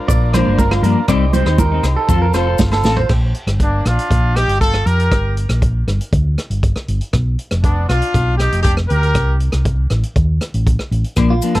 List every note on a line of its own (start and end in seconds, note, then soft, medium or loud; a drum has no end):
0.00 1.06 D4 medium
0.00 1.06 F4 medium
0.00 1.07 A#4 medium
0.08 0.42 A#1 loud
0.08 0.32 D5 medium
0.08 kick loud
0.08 muted conga soft
0.08 maracas medium
0.33 0.47 F3 medium
0.33 0.48 A#3 medium
0.33 0.47 D4 medium
0.33 0.58 C5 medium
0.33 cross-stick medium
0.33 closed hi-hat medium
0.33 muted conga soft
0.33 high conga medium
0.33 low agogo medium
0.33 maracas medium
0.47 0.80 G1 medium
0.47 0.63 A#3 medium
0.47 0.62 D4 medium
0.59 0.71 A#4 medium
0.59 kick medium
0.59 high conga medium
0.59 maracas medium
0.71 0.83 F4 medium
0.71 cross-stick medium
0.71 low agogo medium
0.82 0.94 G2 loud
0.82 0.99 F3 medium
0.82 1.00 A#3 medium
0.82 1.00 D4 medium
0.82 1.07 A#4 medium
0.82 closed hi-hat medium
0.82 maracas medium
1.08 1.42 C2 loud
1.08 1.24 G3 medium
1.08 1.24 C4 loud
1.08 2.08 D#4 medium
1.08 1.25 D#4 medium
1.08 2.08 G4 medium
1.08 3.07 C5 medium
1.08 1.33 D5 medium
1.08 kick medium
1.08 cross-stick medium
1.08 muted conga soft
1.08 low agogo medium
1.08 maracas medium
1.33 1.47 G3 medium
1.33 1.47 C4 medium
1.33 1.46 D#4 medium
1.33 1.58 C5 medium
1.33 closed hi-hat medium
1.33 high conga medium
1.33 maracas medium
1.45 1.79 D#2 medium
1.45 1.62 D#4 medium
1.45 cross-stick medium
1.45 low agogo medium
1.50 1.63 C4 soft
1.58 1.83 A#4 medium
1.58 kick medium
1.58 muted conga soft
1.58 high conga medium
1.58 maracas medium
1.72 1.88 C4 medium
1.72 1.87 D#4 medium
1.83 1.95 C2 loud
1.83 cross-stick medium
1.83 closed hi-hat soft
1.83 low agogo medium
1.83 maracas medium
1.97 2.21 A4 medium
2.08 2.31 F2 medium
2.08 2.25 C4 medium
2.08 3.09 F4 medium
2.08 2.25 F4 medium
2.08 3.08 A4 medium
2.08 2.26 A4 medium
2.08 kick loud
2.08 muted conga soft
2.08 low conga medium
2.08 maracas loud
2.22 2.34 A#4 medium
2.33 2.56 F1 medium
2.33 2.48 C4 medium
2.33 2.48 F4 medium
2.33 2.58 C5 medium
2.33 cross-stick medium
2.33 closed hi-hat soft
2.33 muted conga soft
2.33 low agogo medium
2.33 maracas medium
2.37 2.46 A4 medium
2.47 2.63 F4 medium
2.47 2.62 A4 medium
2.58 2.82 G1 medium
2.58 kick medium
2.58 snare soft
2.58 high conga medium
2.58 maracas loud
2.72 2.96 A4 medium
2.72 snare medium
2.72 low agogo medium
2.84 3.07 A1 medium
2.84 3.00 C4 medium
2.84 3.00 F4 medium
2.84 3.01 A4 medium
2.84 snare medium
2.84 maracas medium
2.97 3.09 C5 medium
2.97 floor tom medium
3.09 3.32 A#1 medium
3.09 kick medium
3.09 cross-stick medium
3.09 crash medium
3.34 closed hi-hat medium
3.47 3.80 G1 medium
3.47 cross-stick medium
3.47 closed hi-hat soft
3.60 3.84 A#3 medium
3.60 3.84 D4 medium
3.60 kick medium
3.60 closed hi-hat soft
3.85 3.97 A#1 medium
3.85 4.36 D4 medium
3.85 4.37 F4 medium
3.85 cross-stick medium
3.85 closed hi-hat soft
3.99 closed hi-hat medium
4.11 4.44 A#1 medium
4.11 kick medium
4.11 closed hi-hat soft
4.36 4.61 D#4 medium
4.36 4.61 G4 medium
4.36 cross-stick medium
4.36 closed hi-hat soft
4.48 4.81 G1 medium
4.48 closed hi-hat soft
4.60 4.84 F4 medium
4.60 4.84 A4 loud
4.60 kick medium
4.60 closed hi-hat soft
4.74 cross-stick medium
4.86 5.08 F2 medium
4.86 5.37 G4 medium
4.86 5.36 A#4 medium
4.86 closed hi-hat medium
5.00 closed hi-hat soft
5.12 5.45 G1 medium
5.12 kick medium
5.12 cross-stick medium
5.12 closed hi-hat soft
5.37 closed hi-hat soft
5.49 5.82 A#1 medium
5.49 cross-stick medium
5.49 closed hi-hat soft
5.62 kick medium
5.62 closed hi-hat soft
5.87 5.98 G1 medium
5.87 cross-stick medium
5.87 closed hi-hat soft
6.01 closed hi-hat soft
6.13 6.35 D2 loud
6.13 kick medium
6.13 closed hi-hat soft
6.38 cross-stick medium
6.38 closed hi-hat soft
6.50 6.72 G1 medium
6.50 closed hi-hat medium
6.63 kick medium
6.63 closed hi-hat soft
6.76 cross-stick medium
6.88 6.99 G1 medium
6.88 closed hi-hat soft
7.01 closed hi-hat soft
7.13 7.35 B1 medium
7.13 kick medium
7.13 cross-stick medium
7.13 closed hi-hat soft
7.39 closed hi-hat soft
7.51 7.85 F1 medium
7.51 cross-stick medium
7.51 closed hi-hat soft
7.63 7.87 B3 medium
7.63 7.87 D4 medium
7.63 kick medium
7.63 closed hi-hat soft
7.88 8.00 B1 medium
7.88 8.36 D4 medium
7.88 8.36 F4 medium
7.88 cross-stick medium
7.88 closed hi-hat soft
8.02 closed hi-hat soft
8.14 8.47 B1 loud
8.14 kick medium
8.14 closed hi-hat soft
8.37 8.62 D#4 medium
8.37 8.61 G4 medium
8.37 cross-stick medium
8.37 closed hi-hat soft
8.52 8.85 F1 medium
8.52 closed hi-hat medium
8.62 8.76 D4 medium
8.62 8.74 G4 loud
8.62 kick medium
8.62 closed hi-hat medium
8.77 cross-stick medium
8.87 9.12 D2 medium
8.87 9.36 G4 medium
8.87 9.35 A#4 medium
8.87 closed hi-hat medium
9.03 closed hi-hat soft
9.15 9.48 C2 loud
9.15 kick medium
9.15 cross-stick medium
9.15 closed hi-hat soft
9.40 closed hi-hat soft
9.52 9.86 C2 medium
9.52 cross-stick medium
9.52 closed hi-hat soft
9.65 kick medium
9.65 closed hi-hat soft
9.90 10.02 A1 medium
9.90 cross-stick medium
9.90 closed hi-hat soft
10.03 closed hi-hat soft
10.16 10.38 D#2 loud
10.16 kick medium
10.16 closed hi-hat soft
10.41 cross-stick medium
10.41 closed hi-hat soft
10.54 10.76 A1 medium
10.54 closed hi-hat soft
10.67 kick medium
10.67 closed hi-hat soft
10.79 cross-stick medium
10.91 11.03 A1 medium
10.91 closed hi-hat soft
11.04 closed hi-hat soft
11.16 11.39 A#1 medium
11.16 11.32 F3 medium
11.16 11.33 A#3 medium
11.16 11.33 D4 medium
11.16 kick medium
11.16 cross-stick medium
11.16 closed hi-hat soft
11.16 muted conga soft
11.16 low agogo medium
11.16 maracas soft
11.30 11.54 F4 medium
11.42 11.55 F3 medium
11.42 11.55 A#3 medium
11.42 11.53 D4 medium
11.42 closed hi-hat soft
11.42 maracas medium
11.54 11.60 G1 medium
11.54 11.60 A#3 soft
11.54 11.60 D4 soft
11.54 11.60 A4 medium
11.54 cross-stick medium
11.54 closed hi-hat soft
11.54 low agogo medium